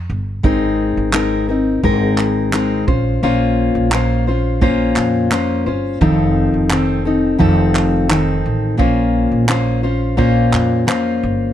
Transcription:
0.10 upright bass G1
0.43 upright bass G#1, steel-string acoustic guitar G#3 C4 D#4 A#4, kick
0.97 upright bass G#1
1.12 steel-string acoustic guitar G#3 C4 D#4 A#4, clap
1.49 steel-string acoustic guitar C4 D#4 A#4
1.83 upright bass G#1, steel-string acoustic guitar G#3 C4 D#4 A#4, kick
2.18 clap
2.53 steel-string acoustic guitar G#3 C4 D#4 A#4, clap
2.87 upright bass A#1, steel-string acoustic guitar C#4 F4 C5, kick
3.23 upright bass A#1, steel-string acoustic guitar A#2 A#3 C#4 F4 C5
3.75 upright bass A#1
3.92 steel-string acoustic guitar A#3 C#4 F4 C5, clap
4.27 steel-string acoustic guitar C#4 F4 C5
4.61 steel-string acoustic guitar A#2 A#3 C#4 F4 C5, kick
4.96 upright bass F2, clap
5.31 steel-string acoustic guitar A#3 C#4 F4 C5, clap
5.66 upright bass G1, steel-string acoustic guitar C#4 F4 C5
6.01 upright bass F1, steel-string acoustic guitar F2 D#3 F3 C4 D#4 A4, kick
6.54 upright bass F1
6.70 steel-string acoustic guitar D#3 C4 D#4 A4, clap
7.05 steel-string acoustic guitar D#3 C4 D#4 A4
7.38 upright bass F1, steel-string acoustic guitar F2 D#3 F3 C4 D#4 A4, kick
7.75 clap
8.09 steel-string acoustic guitar D#3 C4 D#4 A4, clap
8.46 upright bass A1
8.77 upright bass A#1, steel-string acoustic guitar A#2 A#3 C#4 F4 C5, kick
9.32 upright bass A#1
9.48 steel-string acoustic guitar A#3 C#4 F4 C5, clap
9.83 steel-string acoustic guitar C#4 F4 C5
10.17 steel-string acoustic guitar A#2 A#3 C#4 F4 C5, kick
10.53 upright bass F2, clap
10.87 steel-string acoustic guitar A#3 C#4 F4 C5, clap
11.23 upright bass G1

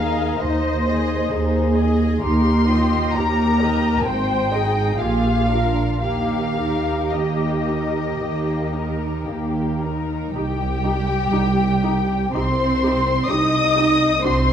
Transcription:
Already playing: cello section D#2, double bass section D#2, violin section G#4 D#5 F5, viola section A#4
0.39 cello section D#2, double bass section D#2, violin section D#4 C5 D#5, viola section C5
0.87 violin section G#4 D#5
1.30 cello section D#2, double bass section D#2, violin section D#4 C5, viola section G#4
1.78 violin section G#4 D#5
2.22 cello section D#2, double bass section D#2, violin section D#4 A#4 C6, viola section G4
2.69 viola section F4, violin section G4 D#5
3.13 double bass section D#2, cello section D#2, violin section D#4 A#4 A#5, viola section G4
3.61 violin section G4 D#5, viola section A#4
4.04 double bass section G#1, cello section G#2, violin section C4 C5 G5, viola section C5
4.50 violin section D#4 D#5, viola section G#4
4.98 double bass section A#1, cello section A#2, violin section F4 G#4 F5, viola section G4
5.49 violin section D4 A#4, viola section F4
6.01 double bass section D#2, cello section D#3, violin section A#3 G4 F5, viola section G4
6.59 violin section D#4 A#4
7.12 double bass section D#2, cello section D#3, violin section A#3 G4 D#5
7.69 violin section D#4 A#4
8.21 double bass section D#2, cello section D#3, violin section A#3 G4
8.75 violin section D#4 A#4
9.27 double bass section D#2, cello section D#3, violin section A#3 G4
9.84 violin section D#4 A#4
10.34 double bass section C2, cello section G3, viola section D#4 G4, violin section G4 G5
10.84 viola section D#4 G4
11.31 double bass section C2, viola section D#4 G4
11.83 viola section D#4 G4
12.33 double bass section C2, cello section C4, viola section D#4 G4, violin section C5 C6
12.82 viola section D#4 G4
13.28 double bass section C2, viola section D#4 G4, cello section D#4, violin section D#5 D#6
13.76 viola section D#4 G4
14.23 double bass section C2, cello section C4, viola section D4 F#4, violin section C5 C6

